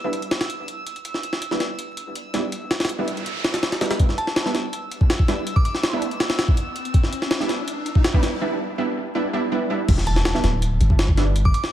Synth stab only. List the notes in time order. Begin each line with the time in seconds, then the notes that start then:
0.04 G3 B3 D4 E4
1.51 G3 B3 D4 E4
2.34 G3 B3 D4 E4
2.99 G3 B3 D4 E4
3.81 G3 B3 D4 E4
3.90 G3 B3 D4 E4
4.46 G3 B3 D4 E4
5.28 G3 B3 D4 E4
5.93 G3 B3 D4 E4
7.40 G3 B3 D4 E4
8.14 G3 B3 D4 E4
8.41 G3 B3 D4 E4
8.78 G3 B3 D4 E4
9.15 G3 B3 D4 E4
9.33 G3 B3 D4 E4
9.52 G3 B3 D4 E4
9.70 G3 B3 D4 E4
10.35 G3 B3 D4 E4
11.17 G3 B3 D4 E4